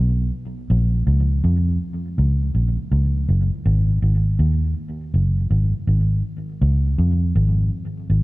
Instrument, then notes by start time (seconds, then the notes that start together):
fingered electric bass
Already playing: B1
0.70 A#1
1.07 C#2
1.44 F2
2.18 C#2
2.55 A#1
2.92 C#2
3.29 F#1
3.66 G#1
4.02 G#1
4.39 D#2
5.14 F#1
5.50 G#1
5.87 G#1
6.62 C#2
6.98 F2
7.35 G#1
8.10 G#1